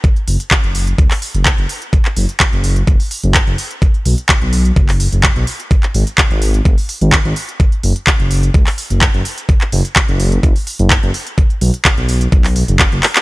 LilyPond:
<<
  \new Staff \with { instrumentName = "Detuned saw bass" } { \clef bass \time 4/4 \key fis \mixolydian \tempo 4 = 127 r8 fis,,16 r8 fis,,8. cis,16 r8 fis,,16 r16 fis,,16 r8 | r8 fis,,16 r8 fis,,8. fis,,16 r8 fis,,16 r16 fis,,16 r8 | r8 b,,16 r8 b,,8. fis,,8. fis,,16 r16 b,,16 r8 | r8 gis,,16 r8 gis,,8. fis,,16 r8 gis,,16 r16 gis,,16 r8 |
r8 fis,,16 r8 fis,,8. cis,16 r8 fis,,16 r16 fis,,16 r8 | r8 fis,,16 r8 fis,,8. fis,,16 r8 fis,,16 r16 fis,,16 r8 | r8 b,,16 r8 b,,8. b,,8. fis,,16 r16 fis,,16 r8 | }
  \new DrumStaff \with { instrumentName = "Drums" } \drummode { \time 4/4 <hh bd>16 hh16 hho16 hh16 <hc hh bd>16 hh16 hho16 hh16 <hh bd>16 <hc hho>16 hho16 hh16 <hc hh bd>16 hh16 hho16 hh16 | <hh bd>16 <hc hh>16 hho16 hh16 <hc hh bd>16 hh16 hho16 hh16 <hh bd>16 hho16 hho16 hh16 <hc hh bd>16 hh16 hho16 hh16 | <hh bd>16 hh16 hho16 hh16 <hc hh bd>16 hh16 hho16 hh16 <hh bd>16 <hc hho>16 hho16 hh16 <hc hh bd>16 hh16 hho16 hh16 | <hh bd>16 <hc hh>16 hho16 hh16 <hc hh bd>16 hh16 hho16 hh16 <hh bd>16 hho16 hho16 hh16 <hc hh bd>16 hh16 hho16 hh16 |
<hh bd>16 hh16 hho16 hh16 <hc hh bd>16 hh16 hho16 hh16 <hh bd>16 <hc hho>16 hho16 hh16 <hc hh bd>16 hh16 hho16 hh16 | <hh bd>16 <hc hh>16 hho16 hh16 <hc hh bd>16 hh16 hho16 hh16 <hh bd>16 hho16 hho16 hh16 <hc hh bd>16 hh16 hho16 hh16 | <hh bd>16 hh16 hho16 hh16 <hc hh bd>16 hh16 hho16 hh16 <hh bd>16 <hc hho>16 hho16 hh16 <hc hh bd>16 hh16 <hc hho>16 <hc hh>16 | }
>>